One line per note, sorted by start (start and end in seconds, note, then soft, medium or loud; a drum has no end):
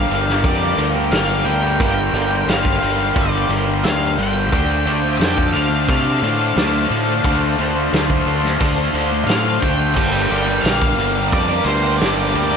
0.00 0.61 G2 medium
0.00 0.29 D3 loud
0.00 0.27 G3 loud
0.00 2.24 D4 loud
0.00 2.41 D4 medium
0.00 4.48 A#4 medium
0.00 0.46 F5 loud
0.00 4.48 F5 medium
0.00 4.48 G5 medium
0.00 1.76 D6 medium
0.09 0.43 G1 medium
0.09 0.43 G2 medium
0.09 0.43 D3 loud
0.09 0.44 G3 medium
0.09 open hi-hat medium
0.28 0.62 D3 medium
0.28 0.60 G3 medium
0.28 snare soft
0.44 0.77 F2 medium
0.44 0.77 G2 medium
0.44 0.77 D3 medium
0.44 0.77 G3 loud
0.44 0.77 D5 medium
0.44 kick loud
0.44 open hi-hat medium
0.61 0.77 D3 medium
0.61 0.78 G3 medium
0.77 1.11 D2 medium
0.77 1.10 G2 medium
0.77 0.94 D3 medium
0.77 0.92 G3 medium
0.77 open hi-hat medium
0.93 1.11 D3 medium
0.93 1.12 G3 medium
1.11 1.43 G1 medium
1.11 1.45 G2 loud
1.11 1.46 D3 loud
1.11 1.48 G3 loud
1.11 1.47 F5 loud
1.11 snare loud
1.11 open hi-hat medium
1.44 1.78 D2 medium
1.44 1.78 G2 medium
1.44 1.63 D3 medium
1.44 1.80 G5 loud
1.44 open hi-hat medium
1.49 1.61 G3 medium
1.63 1.79 D3 medium
1.63 1.80 G3 medium
1.79 2.13 G1 loud
1.79 2.12 G2 medium
1.79 2.13 D3 loud
1.79 2.14 G3 loud
1.79 2.51 G5 loud
1.79 4.49 C6 medium
1.79 kick loud
1.79 open hi-hat medium
2.13 2.47 G1 loud
2.13 2.45 G2 medium
2.13 2.32 D3 medium
2.13 2.30 G3 medium
2.13 open hi-hat medium
2.31 2.47 D3 medium
2.31 2.47 G3 medium
2.47 2.81 G1 loud
2.47 3.32 G2 medium
2.47 3.00 D3 loud
2.47 2.98 G3 loud
2.47 3.13 F5 loud
2.47 snare loud
2.47 open hi-hat medium
2.65 kick medium
2.82 3.15 G1 medium
2.82 3.14 G2 medium
2.82 3.15 D3 loud
2.82 3.15 G3 loud
2.82 open hi-hat medium
2.99 3.32 D3 medium
2.99 3.30 G3 medium
3.15 3.48 G1 medium
3.15 3.47 G2 loud
3.15 3.49 D3 loud
3.15 3.49 G3 loud
3.15 3.49 D5 medium
3.15 kick loud
3.15 open hi-hat loud
3.32 3.48 D3 medium
3.32 3.49 G3 medium
3.48 3.82 G1 medium
3.48 3.81 G2 medium
3.48 3.67 D3 medium
3.48 3.65 G3 medium
3.48 open hi-hat medium
3.66 3.83 D3 medium
3.66 3.84 G3 medium
3.83 4.17 D2 medium
3.83 4.16 G2 loud
3.83 4.18 D3 loud
3.83 4.19 G3 loud
3.83 4.16 F5 loud
3.83 snare loud
3.83 open hi-hat medium
4.16 4.52 G1 medium
4.16 4.50 G2 medium
4.16 4.35 D3 medium
4.16 4.33 G3 medium
4.16 4.48 G5 loud
4.16 open hi-hat medium
4.34 4.50 D3 medium
4.34 4.50 G3 medium
4.50 4.85 D2 loud
4.50 4.85 D3 loud
4.50 4.86 A3 loud
4.50 4.87 D4 loud
4.50 9.93 C5 medium
4.50 5.17 G5 loud
4.50 7.22 D6 loud
4.50 kick loud
4.50 open hi-hat medium
4.55 12.57 F5 medium
4.55 9.94 A5 medium
4.85 5.19 D2 loud
4.85 5.18 D3 medium
4.85 5.05 A3 medium
4.85 5.02 D4 medium
4.85 open hi-hat medium
5.03 5.19 A3 medium
5.03 5.20 D4 medium
5.18 5.53 F2 loud
5.18 6.04 D3 medium
5.18 5.71 A3 loud
5.18 5.69 D4 loud
5.18 5.54 G5 loud
5.18 snare loud
5.18 open hi-hat medium
5.38 kick medium
5.53 5.87 D2 medium
5.53 5.88 D3 medium
5.53 5.88 A3 loud
5.53 5.89 D4 loud
5.53 5.86 F5 loud
5.53 open hi-hat medium
5.69 6.06 A3 medium
5.69 6.04 D4 medium
5.87 6.21 C3 medium
5.87 6.20 D3 medium
5.87 6.21 A3 loud
5.87 6.23 D4 loud
5.87 9.26 F5 loud
5.87 kick loud
5.87 open hi-hat medium
6.05 6.21 A3 medium
6.05 6.23 D4 medium
6.21 6.55 A2 medium
6.21 6.55 D3 medium
6.21 6.39 A3 medium
6.21 6.38 D4 medium
6.21 open hi-hat medium
6.38 6.56 A3 medium
6.38 6.58 D4 medium
6.56 6.89 D2 loud
6.56 6.88 D3 loud
6.56 6.90 A3 loud
6.56 6.91 D4 loud
6.56 snare loud
6.56 open hi-hat medium
6.90 7.23 A2 medium
6.90 7.23 D3 medium
6.90 7.08 A3 medium
6.90 7.07 D4 medium
6.90 open hi-hat medium
7.07 7.24 A3 medium
7.07 7.26 D4 medium
7.24 7.57 D2 loud
7.24 7.57 D3 loud
7.24 7.57 A3 loud
7.24 7.60 D4 loud
7.24 9.94 C6 medium
7.24 kick loud
7.24 open hi-hat medium
7.58 7.92 D2 loud
7.58 7.91 D3 medium
7.58 7.77 A3 medium
7.58 7.75 D4 medium
7.58 open hi-hat medium
7.75 7.93 A3 medium
7.75 7.95 D4 medium
7.93 8.25 D2 loud
7.93 8.78 D3 medium
7.93 8.44 A3 loud
7.93 8.43 D4 loud
7.93 snare loud
7.93 open hi-hat medium
8.10 kick medium
8.26 8.59 D2 medium
8.26 8.58 D3 medium
8.26 8.58 A3 loud
8.26 8.59 D4 loud
8.26 open hi-hat medium
8.43 8.79 A3 medium
8.43 8.77 D4 medium
8.43 snare soft
8.59 8.93 D2 medium
8.59 8.93 D3 loud
8.59 8.93 A3 loud
8.59 8.94 D4 loud
8.59 kick loud
8.59 open hi-hat loud
8.77 8.93 A3 medium
8.77 8.95 D4 medium
8.92 9.26 D2 medium
8.92 9.26 D3 medium
8.92 9.11 A3 medium
8.92 9.09 D4 medium
8.92 open hi-hat medium
9.10 9.27 A3 medium
9.10 9.29 D4 medium
9.27 9.60 A2 medium
9.27 9.60 D3 loud
9.27 9.61 A3 loud
9.27 9.63 D4 loud
9.27 9.63 F5 loud
9.27 snare loud
9.27 open hi-hat loud
9.60 9.95 D2 medium
9.60 9.94 D3 medium
9.60 9.79 A3 medium
9.60 9.78 D4 medium
9.60 9.93 G5 loud
9.60 kick medium
9.60 open hi-hat medium
9.78 9.95 A3 medium
9.78 12.57 D4 medium
9.94 10.29 G1 medium
9.94 10.28 G2 loud
9.94 10.29 D3 medium
9.94 10.29 G3 medium
9.94 10.30 G3 loud
9.94 10.14 A#3 loud
9.94 10.13 D4 loud
9.94 10.12 G4 loud
9.94 12.57 A#4 medium
9.94 10.26 G5 loud
9.94 12.57 G5 medium
9.94 12.57 D6 medium
9.94 kick loud
9.94 crash loud
10.12 10.30 A#3 medium
10.12 10.30 D4 medium
10.12 10.31 G4 medium
10.27 10.63 G1 medium
10.27 10.63 G2 medium
10.27 10.47 D3 medium
10.27 10.62 G3 medium
10.27 10.48 A#3 medium
10.27 10.47 D4 medium
10.27 10.64 G5 loud
10.31 10.45 G3 medium
10.31 10.46 G4 medium
10.31 open hi-hat medium
10.46 10.63 D3 medium
10.46 10.65 G3 medium
10.46 10.63 A#3 medium
10.46 10.63 D4 medium
10.46 10.64 G4 medium
10.61 10.97 A#1 medium
10.61 11.49 G2 medium
10.61 11.17 D3 loud
10.61 10.96 G3 loud
10.61 10.97 A#3 loud
10.61 10.98 D4 loud
10.61 10.98 G4 loud
10.61 11.28 F5 loud
10.61 tambourine loud
10.65 11.14 G3 loud
10.65 snare loud
10.65 open hi-hat medium
10.82 kick medium
10.96 11.31 G1 medium
10.96 11.31 G2 medium
10.96 11.31 D3 loud
10.96 11.48 G3 medium
10.96 11.32 G3 loud
10.96 11.15 A#3 medium
10.96 11.15 D4 medium
10.96 11.13 G4 medium
10.96 open hi-hat medium
11.15 11.51 D3 medium
11.15 11.48 G3 medium
11.15 11.49 A#3 medium
11.15 11.49 D4 medium
11.15 11.47 G4 medium
11.28 11.65 D5 loud
11.32 11.64 F2 medium
11.32 11.65 G2 medium
11.32 11.66 D3 loud
11.32 11.66 G3 loud
11.32 kick loud
11.32 open hi-hat loud
11.48 11.67 G3 medium
11.48 11.64 A#3 medium
11.48 11.66 D4 medium
11.48 11.66 G4 medium
11.52 11.66 D3 medium
11.64 11.99 D2 loud
11.64 12.00 G2 medium
11.64 11.84 D3 medium
11.64 11.98 G3 medium
11.64 11.82 G3 medium
11.64 11.99 A#3 medium
11.64 12.00 D4 medium
11.64 11.99 G4 medium
11.64 12.00 C5 loud
11.64 open hi-hat medium
11.83 12.01 D3 medium
11.83 12.02 G3 medium
11.97 12.34 G1 loud
11.97 12.32 G3 medium
11.97 12.33 A#3 loud
11.97 12.35 D4 loud
11.97 12.34 G4 loud
11.97 12.57 D5 loud
12.01 12.33 G2 loud
12.01 12.34 D3 loud
12.01 12.35 G3 loud
12.01 snare loud
12.01 open hi-hat medium
12.01 tambourine medium
12.33 12.57 D2 loud
12.33 12.57 G2 medium
12.33 12.52 D3 medium
12.33 12.57 G3 medium
12.33 12.50 G3 medium
12.33 12.52 A#3 medium
12.33 12.52 D4 medium
12.33 12.50 G4 medium
12.33 open hi-hat medium
12.51 12.57 D3 medium
12.51 12.57 G3 medium
12.51 12.57 A#3 medium
12.51 12.57 D4 medium
12.51 12.57 G4 medium